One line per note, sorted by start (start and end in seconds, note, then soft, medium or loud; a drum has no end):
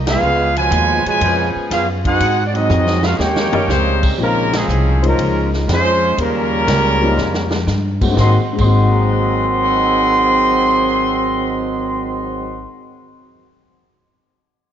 0.00 0.20 C2 medium
0.07 0.53 G#3 medium
0.07 0.53 B3 medium
0.07 0.54 C#4 medium
0.07 0.53 F4 medium
0.07 0.54 G#4 medium
0.07 0.54 B4 medium
0.07 0.54 F5 loud
0.07 snare loud
0.07 ride medium
0.21 0.70 C#2 medium
0.56 1.05 B2 loud
0.56 1.05 F3 loud
0.56 1.04 G#3 loud
0.56 1.06 F4 loud
0.56 1.06 B4 loud
0.56 1.06 C#5 loud
0.56 1.06 G#5 loud
0.56 ride medium
0.71 1.03 D#2 loud
0.71 hi-hat pedal medium
0.71 ride medium
1.06 1.52 B2 medium
1.06 1.52 F3 medium
1.06 1.52 G#3 medium
1.06 1.53 F4 medium
1.06 1.53 B4 medium
1.06 1.53 C#5 medium
1.06 1.53 G#5 loud
1.06 muted upright bass stroke soft
1.06 ride medium
1.21 1.53 F2 loud
1.21 1.99 F3 loud
1.21 1.98 B3 medium
1.21 1.99 C#4 medium
1.21 1.98 G#4 loud
1.21 ride medium
1.56 muted upright bass stroke soft
1.70 2.19 F#2 medium
1.70 1.86 G#3 medium
1.70 1.86 B3 medium
1.70 1.87 C#4 medium
1.70 1.86 F4 medium
1.70 1.87 G#4 medium
1.70 1.87 B4 medium
1.70 1.87 F5 medium
1.70 snare soft
1.70 hi-hat pedal medium
1.70 ride medium
2.04 2.42 C4 medium
2.04 2.42 D#4 medium
2.04 2.43 D#4 medium
2.04 2.42 F#4 medium
2.04 2.43 G#4 medium
2.04 2.43 C5 medium
2.04 2.43 F#5 loud
2.04 kick medium
2.04 ride medium
2.20 2.68 G#2 loud
2.20 ride medium
2.46 2.55 D5 medium
2.53 3.03 F#3 medium
2.53 3.03 C4 medium
2.53 3.04 C4 medium
2.53 3.03 D#4 medium
2.53 3.03 F#4 medium
2.53 3.05 G#4 medium
2.53 3.04 D#5 loud
2.53 ride medium
2.70 3.18 F2 loud
2.70 hi-hat pedal medium
2.70 high tom medium
2.87 snare medium
3.02 3.15 C#4 medium
3.02 3.14 F4 medium
3.02 3.15 F#4 medium
3.02 3.15 A#4 medium
3.02 3.15 F5 medium
3.02 snare medium
3.18 3.51 D#2 medium
3.18 4.03 A#3 medium
3.18 4.03 C#4 medium
3.18 3.71 D#4 medium
3.18 4.03 G4 medium
3.18 4.04 A#4 medium
3.18 4.04 C#5 medium
3.18 3.21 F5 medium
3.18 4.04 G5 loud
3.18 snare medium
3.36 snare medium
3.53 3.64 G3 loud
3.53 3.64 C#4 medium
3.53 3.65 D#4 medium
3.53 3.64 A#4 loud
3.53 muted upright bass stroke soft
3.53 floor tom loud
3.68 4.17 C#2 medium
3.68 4.15 C#3 loud
3.68 4.15 G3 loud
3.68 4.17 A#3 medium
3.68 4.15 C4 medium
3.68 4.17 G4 medium
3.68 4.17 C5 loud
3.68 snare medium
3.68 hi-hat pedal medium
3.72 4.17 D#4 medium
4.03 kick medium
4.03 crash medium
4.18 4.67 A#1 medium
4.18 4.53 C#3 medium
4.18 4.49 F3 medium
4.18 4.53 F3 medium
4.18 4.50 G#3 medium
4.18 4.54 A#3 medium
4.18 4.50 C4 medium
4.18 4.50 C#4 medium
4.18 4.50 D#4 medium
4.22 4.55 G#3 medium
4.22 4.55 C#4 medium
4.22 4.55 F4 medium
4.22 4.55 A#4 loud
4.53 5.02 C#3 medium
4.53 5.02 F3 medium
4.53 5.03 G#3 medium
4.53 5.05 C4 medium
4.53 5.05 C#4 medium
4.53 5.05 G#4 medium
4.53 snare medium
4.53 ride medium
4.68 5.17 C2 loud
4.68 hi-hat pedal medium
5.02 5.50 C#3 medium
5.02 5.65 F3 medium
5.02 5.50 F3 medium
5.02 5.65 G#3 medium
5.02 5.50 A#3 medium
5.02 5.65 C#4 medium
5.02 5.65 D#4 medium
5.02 5.65 C5 medium
5.02 ride medium
5.07 5.52 G#3 medium
5.07 5.52 C#4 medium
5.07 5.52 F4 medium
5.07 5.52 A#4 medium
5.18 5.67 C#2 loud
5.18 ride medium
5.53 snare medium
5.68 6.16 F2 medium
5.68 6.14 F3 loud
5.68 6.14 G#3 loud
5.68 6.14 C#4 loud
5.68 snare medium
5.68 hi-hat pedal medium
5.68 ride medium
5.72 6.17 G#3 loud
5.72 6.17 C#4 loud
5.72 6.17 F4 loud
5.72 6.17 C5 loud
6.17 6.66 D#2 medium
6.17 7.63 C#3 medium
6.17 7.63 G3 loud
6.17 7.63 A#3 loud
6.17 7.65 C#4 medium
6.17 7.65 A#4 loud
6.17 ride medium
6.22 7.65 G3 loud
6.22 7.65 F4 medium
6.67 7.16 C#2 loud
6.67 snare medium
6.67 hi-hat pedal medium
6.67 ride medium
7.02 7.16 F3 medium
7.02 7.16 G3 medium
7.02 7.16 A#3 medium
7.02 7.16 C#4 medium
7.02 7.16 D#4 medium
7.17 7.66 F2 medium
7.17 snare medium
7.34 snare medium
7.51 snare loud
7.67 8.15 G2 medium
7.67 snare medium
7.67 hi-hat pedal medium
8.02 8.16 F#3 medium
8.02 8.13 G#3 medium
8.02 8.16 A#3 medium
8.02 8.16 C4 medium
8.02 8.16 F#4 medium
8.02 kick medium
8.02 crash medium
8.12 8.35 G#2 medium
8.12 8.36 G#3 medium
8.17 8.36 G#1 loud
8.17 8.36 G#2 medium
8.17 8.36 D#3 medium
8.17 8.36 F#3 medium
8.17 8.38 A#3 medium
8.17 8.36 C4 medium
8.17 8.39 C4 medium
8.17 8.38 G#4 medium
8.17 8.38 D#5 medium
8.17 8.38 F#5 medium
8.17 8.38 C6 medium
8.17 kick medium
8.17 snare medium
8.23 8.41 F#4 medium
8.53 12.62 G#2 medium
8.53 12.65 G#3 medium
8.59 12.64 G#1 medium
8.59 12.65 G#2 loud
8.59 12.65 D#3 loud
8.59 12.65 F#3 loud
8.59 12.68 A#3 medium
8.59 12.65 C4 loud
8.59 12.71 C4 medium
8.59 12.67 G#4 medium
8.59 12.67 D#5 medium
8.59 12.67 F#5 medium
8.59 12.67 C6 loud
8.59 kick medium
8.59 crash medium
8.65 12.74 F#4 medium
8.65 12.72 A#4 soft
8.75 12.80 D#5 soft
8.83 12.88 F#5 soft
8.92 12.97 A#5 soft
9.01 13.06 D#6 soft
9.13 13.18 F#6 soft
9.24 13.29 A#6 soft